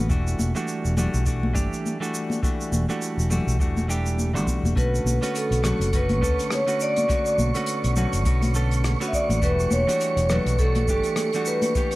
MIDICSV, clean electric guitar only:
0, 0, Header, 1, 2, 480
1, 0, Start_track
1, 0, Tempo, 582524
1, 85, Time_signature, 4, 2, 24, 8
1, 9851, End_track
2, 0, Start_track
2, 0, Title_t, "Clean electric guitar"
2, 0, Program_c, 0, 27
2, 76, Note_on_c, 0, 52, 82
2, 82, Note_on_c, 0, 55, 57
2, 85, Note_on_c, 0, 57, 65
2, 88, Note_on_c, 0, 62, 66
2, 90, Note_on_c, 0, 66, 88
2, 426, Note_off_c, 0, 52, 0
2, 427, Note_off_c, 0, 55, 0
2, 430, Note_off_c, 0, 57, 0
2, 430, Note_off_c, 0, 62, 0
2, 432, Note_off_c, 0, 66, 0
2, 451, Note_on_c, 0, 52, 86
2, 458, Note_on_c, 0, 55, 70
2, 461, Note_on_c, 0, 57, 80
2, 465, Note_on_c, 0, 62, 74
2, 468, Note_on_c, 0, 66, 99
2, 775, Note_off_c, 0, 52, 0
2, 777, Note_off_c, 0, 55, 0
2, 779, Note_off_c, 0, 57, 0
2, 780, Note_off_c, 0, 62, 0
2, 783, Note_off_c, 0, 66, 0
2, 797, Note_on_c, 0, 52, 80
2, 800, Note_on_c, 0, 55, 80
2, 804, Note_on_c, 0, 57, 78
2, 806, Note_on_c, 0, 62, 83
2, 814, Note_on_c, 0, 66, 84
2, 1016, Note_off_c, 0, 52, 0
2, 1018, Note_off_c, 0, 55, 0
2, 1020, Note_off_c, 0, 57, 0
2, 1022, Note_off_c, 0, 62, 0
2, 1023, Note_off_c, 0, 66, 0
2, 1035, Note_on_c, 0, 52, 64
2, 1042, Note_on_c, 0, 57, 62
2, 1046, Note_on_c, 0, 55, 51
2, 1046, Note_on_c, 0, 62, 66
2, 1054, Note_on_c, 0, 66, 65
2, 1255, Note_off_c, 0, 52, 0
2, 1259, Note_off_c, 0, 55, 0
2, 1259, Note_off_c, 0, 57, 0
2, 1262, Note_off_c, 0, 62, 0
2, 1263, Note_off_c, 0, 66, 0
2, 1265, Note_on_c, 0, 52, 86
2, 1273, Note_on_c, 0, 57, 72
2, 1274, Note_on_c, 0, 55, 67
2, 1276, Note_on_c, 0, 62, 84
2, 1280, Note_on_c, 0, 67, 99
2, 1619, Note_off_c, 0, 52, 0
2, 1623, Note_off_c, 0, 55, 0
2, 1624, Note_off_c, 0, 57, 0
2, 1625, Note_off_c, 0, 62, 0
2, 1627, Note_off_c, 0, 67, 0
2, 1649, Note_on_c, 0, 52, 85
2, 1655, Note_on_c, 0, 55, 70
2, 1656, Note_on_c, 0, 57, 82
2, 1660, Note_on_c, 0, 62, 82
2, 1667, Note_on_c, 0, 66, 91
2, 1974, Note_off_c, 0, 52, 0
2, 1975, Note_off_c, 0, 55, 0
2, 1977, Note_off_c, 0, 57, 0
2, 1979, Note_off_c, 0, 62, 0
2, 1983, Note_off_c, 0, 66, 0
2, 1999, Note_on_c, 0, 52, 81
2, 2003, Note_on_c, 0, 57, 75
2, 2008, Note_on_c, 0, 55, 65
2, 2009, Note_on_c, 0, 62, 69
2, 2014, Note_on_c, 0, 66, 86
2, 2347, Note_off_c, 0, 52, 0
2, 2349, Note_off_c, 0, 57, 0
2, 2350, Note_off_c, 0, 55, 0
2, 2352, Note_off_c, 0, 62, 0
2, 2354, Note_off_c, 0, 66, 0
2, 2380, Note_on_c, 0, 52, 80
2, 2385, Note_on_c, 0, 55, 75
2, 2387, Note_on_c, 0, 57, 84
2, 2391, Note_on_c, 0, 62, 75
2, 2394, Note_on_c, 0, 66, 90
2, 2699, Note_off_c, 0, 52, 0
2, 2700, Note_off_c, 0, 55, 0
2, 2702, Note_off_c, 0, 57, 0
2, 2705, Note_off_c, 0, 62, 0
2, 2705, Note_off_c, 0, 66, 0
2, 2717, Note_on_c, 0, 52, 85
2, 2723, Note_on_c, 0, 55, 70
2, 2724, Note_on_c, 0, 57, 77
2, 2729, Note_on_c, 0, 62, 72
2, 2735, Note_on_c, 0, 66, 85
2, 2937, Note_off_c, 0, 52, 0
2, 2938, Note_off_c, 0, 55, 0
2, 2940, Note_off_c, 0, 57, 0
2, 2942, Note_off_c, 0, 62, 0
2, 2945, Note_off_c, 0, 66, 0
2, 2961, Note_on_c, 0, 52, 63
2, 2966, Note_on_c, 0, 55, 51
2, 2966, Note_on_c, 0, 57, 64
2, 2972, Note_on_c, 0, 62, 60
2, 2977, Note_on_c, 0, 66, 77
2, 3179, Note_off_c, 0, 52, 0
2, 3179, Note_off_c, 0, 55, 0
2, 3181, Note_off_c, 0, 57, 0
2, 3184, Note_off_c, 0, 62, 0
2, 3186, Note_off_c, 0, 66, 0
2, 3198, Note_on_c, 0, 52, 88
2, 3206, Note_on_c, 0, 55, 75
2, 3208, Note_on_c, 0, 57, 76
2, 3214, Note_on_c, 0, 62, 70
2, 3217, Note_on_c, 0, 67, 103
2, 3546, Note_off_c, 0, 52, 0
2, 3550, Note_off_c, 0, 55, 0
2, 3552, Note_off_c, 0, 57, 0
2, 3553, Note_off_c, 0, 62, 0
2, 3556, Note_off_c, 0, 67, 0
2, 3571, Note_on_c, 0, 52, 88
2, 3577, Note_on_c, 0, 55, 80
2, 3584, Note_on_c, 0, 62, 81
2, 3587, Note_on_c, 0, 57, 76
2, 3591, Note_on_c, 0, 66, 92
2, 3895, Note_off_c, 0, 52, 0
2, 3899, Note_off_c, 0, 55, 0
2, 3900, Note_off_c, 0, 57, 0
2, 3901, Note_off_c, 0, 62, 0
2, 3904, Note_off_c, 0, 66, 0
2, 3919, Note_on_c, 0, 50, 78
2, 3924, Note_on_c, 0, 57, 75
2, 3927, Note_on_c, 0, 61, 70
2, 3929, Note_on_c, 0, 59, 61
2, 3934, Note_on_c, 0, 66, 88
2, 4267, Note_off_c, 0, 50, 0
2, 4269, Note_off_c, 0, 57, 0
2, 4271, Note_off_c, 0, 59, 0
2, 4272, Note_off_c, 0, 61, 0
2, 4274, Note_off_c, 0, 66, 0
2, 4294, Note_on_c, 0, 50, 82
2, 4300, Note_on_c, 0, 57, 81
2, 4305, Note_on_c, 0, 59, 82
2, 4308, Note_on_c, 0, 61, 83
2, 4312, Note_on_c, 0, 66, 89
2, 4616, Note_off_c, 0, 50, 0
2, 4619, Note_off_c, 0, 57, 0
2, 4622, Note_off_c, 0, 59, 0
2, 4623, Note_off_c, 0, 61, 0
2, 4624, Note_off_c, 0, 66, 0
2, 4635, Note_on_c, 0, 50, 83
2, 4640, Note_on_c, 0, 57, 76
2, 4643, Note_on_c, 0, 61, 80
2, 4645, Note_on_c, 0, 59, 62
2, 4648, Note_on_c, 0, 66, 98
2, 4855, Note_off_c, 0, 50, 0
2, 4858, Note_off_c, 0, 57, 0
2, 4859, Note_off_c, 0, 59, 0
2, 4860, Note_off_c, 0, 61, 0
2, 4862, Note_off_c, 0, 66, 0
2, 4884, Note_on_c, 0, 50, 65
2, 4888, Note_on_c, 0, 57, 58
2, 4896, Note_on_c, 0, 59, 49
2, 4896, Note_on_c, 0, 61, 60
2, 4900, Note_on_c, 0, 66, 73
2, 5100, Note_off_c, 0, 50, 0
2, 5102, Note_off_c, 0, 57, 0
2, 5105, Note_off_c, 0, 59, 0
2, 5106, Note_off_c, 0, 61, 0
2, 5108, Note_off_c, 0, 66, 0
2, 5117, Note_on_c, 0, 50, 87
2, 5124, Note_on_c, 0, 57, 75
2, 5125, Note_on_c, 0, 59, 82
2, 5128, Note_on_c, 0, 61, 87
2, 5132, Note_on_c, 0, 69, 88
2, 5466, Note_off_c, 0, 50, 0
2, 5467, Note_off_c, 0, 57, 0
2, 5470, Note_off_c, 0, 59, 0
2, 5472, Note_off_c, 0, 61, 0
2, 5472, Note_off_c, 0, 69, 0
2, 5491, Note_on_c, 0, 50, 92
2, 5495, Note_on_c, 0, 57, 81
2, 5503, Note_on_c, 0, 59, 70
2, 5503, Note_on_c, 0, 61, 86
2, 5507, Note_on_c, 0, 66, 85
2, 5815, Note_off_c, 0, 50, 0
2, 5818, Note_off_c, 0, 57, 0
2, 5819, Note_off_c, 0, 59, 0
2, 5821, Note_off_c, 0, 61, 0
2, 5822, Note_off_c, 0, 66, 0
2, 5832, Note_on_c, 0, 50, 83
2, 5837, Note_on_c, 0, 57, 76
2, 5844, Note_on_c, 0, 59, 64
2, 5844, Note_on_c, 0, 61, 69
2, 5851, Note_on_c, 0, 66, 88
2, 6183, Note_off_c, 0, 50, 0
2, 6187, Note_off_c, 0, 57, 0
2, 6188, Note_off_c, 0, 59, 0
2, 6189, Note_off_c, 0, 61, 0
2, 6193, Note_off_c, 0, 66, 0
2, 6216, Note_on_c, 0, 50, 90
2, 6221, Note_on_c, 0, 57, 87
2, 6227, Note_on_c, 0, 59, 74
2, 6229, Note_on_c, 0, 61, 91
2, 6235, Note_on_c, 0, 66, 87
2, 6537, Note_off_c, 0, 50, 0
2, 6540, Note_off_c, 0, 57, 0
2, 6541, Note_off_c, 0, 59, 0
2, 6544, Note_off_c, 0, 61, 0
2, 6545, Note_off_c, 0, 66, 0
2, 6561, Note_on_c, 0, 50, 86
2, 6564, Note_on_c, 0, 57, 74
2, 6570, Note_on_c, 0, 59, 62
2, 6571, Note_on_c, 0, 61, 81
2, 6577, Note_on_c, 0, 66, 86
2, 6778, Note_off_c, 0, 50, 0
2, 6780, Note_off_c, 0, 57, 0
2, 6782, Note_off_c, 0, 59, 0
2, 6784, Note_off_c, 0, 61, 0
2, 6785, Note_off_c, 0, 66, 0
2, 6797, Note_on_c, 0, 50, 70
2, 6802, Note_on_c, 0, 57, 61
2, 6807, Note_on_c, 0, 59, 66
2, 6810, Note_on_c, 0, 61, 65
2, 6814, Note_on_c, 0, 66, 76
2, 7017, Note_off_c, 0, 50, 0
2, 7019, Note_off_c, 0, 57, 0
2, 7021, Note_off_c, 0, 59, 0
2, 7023, Note_off_c, 0, 61, 0
2, 7025, Note_off_c, 0, 66, 0
2, 7039, Note_on_c, 0, 50, 93
2, 7045, Note_on_c, 0, 57, 65
2, 7048, Note_on_c, 0, 61, 80
2, 7053, Note_on_c, 0, 69, 94
2, 7054, Note_on_c, 0, 59, 74
2, 7388, Note_off_c, 0, 50, 0
2, 7388, Note_off_c, 0, 57, 0
2, 7392, Note_off_c, 0, 61, 0
2, 7393, Note_off_c, 0, 59, 0
2, 7394, Note_off_c, 0, 69, 0
2, 7418, Note_on_c, 0, 50, 93
2, 7424, Note_on_c, 0, 57, 75
2, 7424, Note_on_c, 0, 59, 83
2, 7430, Note_on_c, 0, 61, 81
2, 7434, Note_on_c, 0, 66, 105
2, 7738, Note_off_c, 0, 50, 0
2, 7740, Note_off_c, 0, 57, 0
2, 7741, Note_off_c, 0, 59, 0
2, 7744, Note_off_c, 0, 61, 0
2, 7746, Note_off_c, 0, 66, 0
2, 7756, Note_on_c, 0, 52, 83
2, 7762, Note_on_c, 0, 55, 78
2, 7767, Note_on_c, 0, 57, 73
2, 7770, Note_on_c, 0, 62, 76
2, 7777, Note_on_c, 0, 66, 80
2, 8105, Note_off_c, 0, 52, 0
2, 8108, Note_off_c, 0, 55, 0
2, 8111, Note_off_c, 0, 57, 0
2, 8113, Note_off_c, 0, 62, 0
2, 8114, Note_off_c, 0, 66, 0
2, 8134, Note_on_c, 0, 52, 93
2, 8138, Note_on_c, 0, 55, 78
2, 8146, Note_on_c, 0, 62, 78
2, 8148, Note_on_c, 0, 57, 74
2, 8150, Note_on_c, 0, 66, 102
2, 8456, Note_off_c, 0, 52, 0
2, 8460, Note_off_c, 0, 55, 0
2, 8460, Note_off_c, 0, 57, 0
2, 8461, Note_off_c, 0, 62, 0
2, 8464, Note_off_c, 0, 66, 0
2, 8489, Note_on_c, 0, 52, 97
2, 8491, Note_on_c, 0, 55, 65
2, 8493, Note_on_c, 0, 57, 78
2, 8500, Note_on_c, 0, 62, 83
2, 8501, Note_on_c, 0, 66, 85
2, 8703, Note_off_c, 0, 52, 0
2, 8703, Note_off_c, 0, 55, 0
2, 8704, Note_off_c, 0, 57, 0
2, 8708, Note_off_c, 0, 62, 0
2, 8708, Note_off_c, 0, 66, 0
2, 8729, Note_on_c, 0, 52, 70
2, 8734, Note_on_c, 0, 55, 55
2, 8736, Note_on_c, 0, 57, 68
2, 8741, Note_on_c, 0, 62, 57
2, 8743, Note_on_c, 0, 66, 82
2, 8943, Note_off_c, 0, 52, 0
2, 8943, Note_off_c, 0, 55, 0
2, 8946, Note_off_c, 0, 57, 0
2, 8947, Note_off_c, 0, 62, 0
2, 8949, Note_off_c, 0, 66, 0
2, 8967, Note_on_c, 0, 52, 93
2, 8973, Note_on_c, 0, 57, 85
2, 8974, Note_on_c, 0, 55, 60
2, 8978, Note_on_c, 0, 62, 84
2, 8985, Note_on_c, 0, 67, 110
2, 9311, Note_off_c, 0, 52, 0
2, 9313, Note_off_c, 0, 55, 0
2, 9314, Note_off_c, 0, 57, 0
2, 9316, Note_off_c, 0, 62, 0
2, 9320, Note_off_c, 0, 67, 0
2, 9346, Note_on_c, 0, 52, 92
2, 9351, Note_on_c, 0, 55, 88
2, 9356, Note_on_c, 0, 62, 80
2, 9357, Note_on_c, 0, 57, 73
2, 9363, Note_on_c, 0, 66, 100
2, 9662, Note_off_c, 0, 52, 0
2, 9665, Note_off_c, 0, 55, 0
2, 9665, Note_off_c, 0, 57, 0
2, 9666, Note_off_c, 0, 62, 0
2, 9670, Note_off_c, 0, 66, 0
2, 9682, Note_on_c, 0, 52, 89
2, 9687, Note_on_c, 0, 57, 70
2, 9689, Note_on_c, 0, 62, 77
2, 9691, Note_on_c, 0, 59, 69
2, 9699, Note_on_c, 0, 67, 91
2, 9851, Note_off_c, 0, 52, 0
2, 9851, Note_off_c, 0, 57, 0
2, 9851, Note_off_c, 0, 59, 0
2, 9851, Note_off_c, 0, 62, 0
2, 9851, Note_off_c, 0, 67, 0
2, 9851, End_track
0, 0, End_of_file